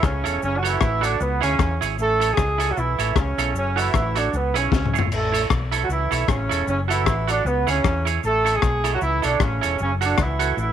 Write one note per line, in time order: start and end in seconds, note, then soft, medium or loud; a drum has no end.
0.03 0.22 C#2 medium
0.03 0.42 C#3 medium
0.03 0.42 C#4 medium
0.03 kick loud
0.03 cross-stick loud
0.03 cabasa medium
0.24 0.40 E1 medium
0.24 0.38 E4 medium
0.24 0.39 A4 medium
0.24 0.39 C#5 medium
0.24 closed hi-hat medium
0.24 cabasa medium
0.42 0.76 F#1 loud
0.42 0.56 C#3 medium
0.42 0.56 C#4 loud
0.42 cabasa medium
0.57 0.65 F#3 medium
0.57 0.65 F#4 medium
0.63 1.04 E3 medium
0.63 1.04 E4 loud
0.63 0.77 F#4 medium
0.63 0.78 A4 medium
0.63 0.78 C#5 loud
0.63 closed hi-hat medium
0.63 cabasa medium
0.81 1.14 A1 medium
0.81 kick loud
0.81 cross-stick loud
0.81 cabasa medium
1.01 1.20 D3 medium
1.01 1.20 D4 medium
1.01 1.16 F#4 loud
1.01 1.16 A4 loud
1.01 1.17 C#5 loud
1.01 closed hi-hat medium
1.01 cabasa medium
1.19 1.39 C#2 loud
1.19 1.42 B3 medium
1.19 cabasa medium
1.41 1.57 D2 medium
1.41 1.79 C#3 medium
1.41 1.79 C#4 medium
1.41 1.55 E4 medium
1.41 1.56 G#4 medium
1.41 1.56 C#5 loud
1.41 closed hi-hat medium
1.41 cabasa medium
1.59 1.78 E2 medium
1.59 kick loud
1.59 cross-stick loud
1.59 cabasa medium
1.81 1.96 G#1 medium
1.81 1.95 E4 medium
1.81 1.95 G#4 medium
1.81 1.96 C#5 medium
1.81 closed hi-hat medium
1.81 cabasa medium
1.99 2.32 A1 loud
1.99 2.27 A3 loud
1.99 2.27 A4 loud
1.99 cabasa medium
2.20 2.34 E4 medium
2.20 2.35 A4 medium
2.20 2.35 C#5 loud
2.20 closed hi-hat medium
2.20 cabasa medium
2.31 2.69 G#3 medium
2.31 2.69 G#4 loud
2.37 2.71 C#2 medium
2.37 kick loud
2.37 cross-stick loud
2.37 cabasa medium
2.58 2.73 E4 medium
2.58 2.73 A4 loud
2.58 2.73 C#5 loud
2.58 closed hi-hat medium
2.58 cabasa medium
2.70 2.77 F#3 medium
2.70 2.77 F#4 medium
2.77 2.96 B1 loud
2.77 3.16 E3 medium
2.77 3.16 E4 medium
2.77 cabasa medium
2.99 3.13 A1 medium
2.99 3.12 E4 medium
2.99 3.13 A4 medium
2.99 3.13 C#5 loud
2.99 closed hi-hat medium
2.99 cabasa medium
3.16 3.35 C#2 medium
3.16 3.54 C#3 medium
3.16 3.54 C#4 medium
3.16 kick loud
3.16 cross-stick loud
3.16 cabasa medium
3.38 3.52 B1 medium
3.38 3.52 E4 medium
3.38 3.52 A4 medium
3.38 3.52 C#5 loud
3.38 closed hi-hat medium
3.38 cabasa medium
3.55 3.88 F#1 loud
3.55 3.76 C#3 medium
3.55 3.76 C#4 medium
3.55 cabasa medium
3.76 4.16 E3 medium
3.76 4.16 E4 medium
3.76 3.90 F#4 medium
3.76 3.90 A4 medium
3.76 3.91 C#5 medium
3.76 closed hi-hat medium
3.76 cabasa medium
3.94 4.27 A1 loud
3.94 kick loud
3.94 cross-stick loud
3.94 cabasa medium
4.15 4.34 D3 medium
4.15 4.34 D4 medium
4.15 4.29 F#4 medium
4.15 4.30 A4 medium
4.15 4.30 C#5 medium
4.15 closed hi-hat loud
4.15 cabasa medium
4.33 4.55 C#2 loud
4.33 4.56 B3 medium
4.33 cabasa medium
4.54 4.69 B1 medium
4.54 4.95 C#3 medium
4.54 4.95 C#4 medium
4.54 4.68 E4 medium
4.54 4.69 G#4 medium
4.54 4.69 C#5 medium
4.54 closed hi-hat medium
4.54 cabasa medium
4.72 4.95 C#2 medium
4.72 kick loud
4.72 snare medium
4.72 cabasa medium
4.86 mid tom medium
4.93 5.08 G#1 medium
4.93 5.07 E4 medium
4.93 5.08 G#4 medium
4.93 5.08 C#5 medium
4.93 cabasa medium
4.99 floor tom loud
5.10 5.44 A1 loud
5.10 5.41 A3 medium
5.10 5.41 A4 medium
5.10 crash medium
5.10 cabasa medium
5.32 5.46 E4 medium
5.32 5.47 A4 medium
5.32 5.47 C#5 medium
5.32 closed hi-hat medium
5.32 cabasa medium
5.50 5.84 B1 medium
5.50 kick loud
5.50 cross-stick loud
5.50 cabasa medium
5.71 5.85 E4 medium
5.71 5.86 A4 medium
5.71 5.86 C#5 medium
5.71 closed hi-hat medium
5.71 cabasa medium
5.82 5.89 F#3 medium
5.82 5.89 F#4 medium
5.89 6.08 C#2 medium
5.89 6.26 E3 medium
5.89 6.26 E4 medium
5.89 cabasa medium
6.11 6.26 B1 medium
6.11 6.25 E4 medium
6.11 6.25 A4 loud
6.11 6.25 C#5 loud
6.11 closed hi-hat medium
6.11 cabasa medium
6.28 6.47 A1 medium
6.28 6.66 C#3 medium
6.28 6.66 C#4 medium
6.28 kick loud
6.28 cross-stick loud
6.28 cabasa medium
6.49 6.65 E1 medium
6.49 6.63 E4 medium
6.49 6.64 A4 medium
6.49 6.64 C#5 medium
6.49 closed hi-hat medium
6.49 cabasa medium
6.67 7.07 F#1 loud
6.67 6.77 C#3 medium
6.67 6.77 C#4 medium
6.67 cabasa medium
6.88 7.26 E3 medium
6.88 7.26 E4 medium
6.88 7.02 F#4 medium
6.88 7.03 A4 medium
6.88 7.03 C#5 medium
6.88 closed hi-hat medium
6.88 cabasa medium
7.06 7.40 A1 loud
7.06 kick loud
7.06 cross-stick loud
7.06 cabasa medium
7.27 7.46 D3 medium
7.27 7.46 D4 medium
7.27 7.42 F#4 medium
7.27 7.42 A4 medium
7.27 7.42 C#5 medium
7.27 closed hi-hat medium
7.27 cabasa medium
7.44 7.64 C#2 loud
7.44 7.67 B3 medium
7.44 cabasa medium
7.67 7.82 D2 medium
7.67 8.04 C#3 medium
7.67 8.04 C#4 medium
7.67 7.81 E4 medium
7.67 7.81 G#4 medium
7.67 7.81 C#5 medium
7.67 closed hi-hat medium
7.67 cabasa medium
7.84 8.18 E2 medium
7.84 kick loud
7.84 cross-stick loud
7.84 cabasa medium
8.05 8.19 E4 medium
8.05 8.20 G#4 medium
8.05 8.20 C#5 medium
8.05 closed hi-hat medium
8.05 cabasa medium
8.23 8.57 A1 loud
8.23 8.52 A3 loud
8.23 8.52 A4 loud
8.23 cabasa medium
8.45 8.59 E4 medium
8.45 8.59 A4 medium
8.45 8.59 C#5 medium
8.45 closed hi-hat medium
8.45 cabasa medium
8.54 8.93 G#3 loud
8.54 8.93 G#4 loud
8.62 8.96 B1 medium
8.62 kick loud
8.62 cross-stick medium
8.62 cabasa medium
8.84 8.98 E4 medium
8.84 8.98 A4 medium
8.84 8.98 C#5 medium
8.84 closed hi-hat medium
8.84 cabasa medium
8.93 8.97 F#3 medium
8.93 8.97 F#4 medium
9.01 9.20 C#2 medium
9.01 9.22 E3 medium
9.01 9.22 E4 loud
9.01 cabasa medium
9.22 9.38 B1 medium
9.22 9.41 D3 medium
9.22 9.41 D4 medium
9.22 9.37 E4 medium
9.22 9.37 A4 medium
9.22 9.38 C#5 medium
9.22 closed hi-hat medium
9.22 cabasa medium
9.40 9.59 A1 medium
9.40 9.80 C#3 medium
9.40 9.80 C#4 medium
9.40 kick loud
9.40 cross-stick loud
9.40 cabasa medium
9.61 9.78 E1 medium
9.61 9.76 E4 medium
9.61 9.76 A4 medium
9.61 9.76 C#5 loud
9.61 closed hi-hat medium
9.61 cabasa medium
9.79 10.13 F#1 loud
9.79 9.91 C#3 medium
9.79 9.91 C#4 loud
9.79 cabasa medium
10.01 10.18 D3 medium
10.01 10.18 D4 medium
10.01 10.15 F#4 medium
10.01 10.15 A4 medium
10.01 10.16 C#5 medium
10.01 closed hi-hat medium
10.01 cabasa medium
10.18 10.51 C#2 medium
10.18 10.59 E3 medium
10.18 10.59 E4 medium
10.18 kick loud
10.18 cross-stick loud
10.18 cabasa medium
10.39 10.54 F#4 medium
10.39 10.54 A4 medium
10.39 10.54 C#5 medium
10.39 closed hi-hat medium
10.39 cabasa medium
10.57 10.73 A1 loud
10.57 10.73 E3 medium
10.57 10.73 E4 medium
10.57 cabasa medium